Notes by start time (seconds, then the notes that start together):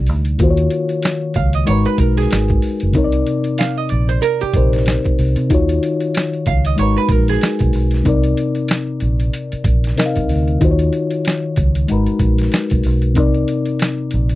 Already playing: C3 G3 A#3 D#4 G4 D5
0.07 D2, open hi-hat
0.25 closed hi-hat
0.38 D#2 D#3 A#3 F4 F#4, kick, closed hi-hat
0.44 C5
0.50 C#5
0.57 closed hi-hat
0.70 closed hi-hat
0.89 closed hi-hat
1.02 snare, closed hi-hat
1.34 C#2 F5, kick, closed hi-hat
1.53 D#5, closed hi-hat
1.65 G#1 G#3 D#4 F#4 C#5, closed hi-hat
1.70 A#4 B4
1.85 B4, closed hi-hat
1.98 B1 A#4, kick, closed hi-hat
2.17 G#4, snare, closed hi-hat
2.31 G#1, snare, closed hi-hat
2.48 kick, closed hi-hat
2.62 open hi-hat
2.80 F#1, closed hi-hat
2.92 C2 C3 C4 D#4, kick, closed hi-hat
2.97 A#4 C#5
3.04 D5
3.12 closed hi-hat
3.27 closed hi-hat
3.44 closed hi-hat
3.58 F5, snare, closed hi-hat
3.77 D#5
3.89 A#1 D5, closed hi-hat
4.09 C5, closed hi-hat
4.22 A#4, closed hi-hat
4.41 G4, muted fingered electric bass stroke, closed hi-hat
4.53 A#1 C3 C4 D#4 A#4 C5, kick, closed hi-hat
4.73 snare, closed hi-hat
4.86 snare, closed hi-hat
5.04 kick, closed hi-hat
5.19 C2, open hi-hat
5.36 C3, closed hi-hat
5.49 D#2 D#3 D#4 F4 F#4, kick, closed hi-hat
5.54 C#5
5.69 closed hi-hat
5.83 closed hi-hat
6.00 closed hi-hat
6.14 snare, closed hi-hat
6.33 closed hi-hat
6.46 C#2 F5, kick, closed hi-hat
6.65 D#5, closed hi-hat
6.76 G#1 G#3 D#4 F#4 C#5, closed hi-hat
6.81 A#4 B4
6.98 B4
7.09 A#1 A#4, kick, closed hi-hat
7.28 G#4, snare, closed hi-hat
7.41 snare, closed hi-hat
7.59 B1, kick, closed hi-hat
7.73 B1, open hi-hat
7.91 snare, closed hi-hat
8.04 C2 C3 C4 D#4, kick, closed hi-hat
8.08 A#4 D5
8.24 closed hi-hat
8.37 closed hi-hat
8.55 closed hi-hat
8.68 snare, closed hi-hat
9.00 A#1, closed hi-hat
9.20 closed hi-hat
9.33 closed hi-hat
9.52 muted fingered electric bass stroke, closed hi-hat
9.64 A#1, kick, closed hi-hat
9.84 snare, closed hi-hat
9.96 C3 C4 D#4 A#4 D#5, snare, closed hi-hat
10.06 F5
10.16 C2, kick, closed hi-hat
10.29 D2, open hi-hat
10.48 closed hi-hat
10.59 D#2 D#3 D#4 F4, kick, closed hi-hat
10.63 F#4 C5
10.71 C#5
10.79 closed hi-hat
10.93 closed hi-hat
11.11 closed hi-hat
11.25 snare, closed hi-hat
11.56 C#2, kick, closed hi-hat
11.75 closed hi-hat
11.88 G#1 G#3 D#4 F#4 A#4, closed hi-hat
11.93 B4
12.06 closed hi-hat
12.11 muted fingered electric bass stroke
12.19 A#1, kick, closed hi-hat
12.38 snare, closed hi-hat
12.52 snare, closed hi-hat
12.70 B1, kick, closed hi-hat
12.83 B1, open hi-hat
13.02 closed hi-hat
13.14 C2 C3 C4 D#4, kick, closed hi-hat
13.18 A#4 D5
13.34 closed hi-hat
13.48 closed hi-hat
13.66 closed hi-hat
13.79 snare, closed hi-hat
14.11 A#1, closed hi-hat
14.29 closed hi-hat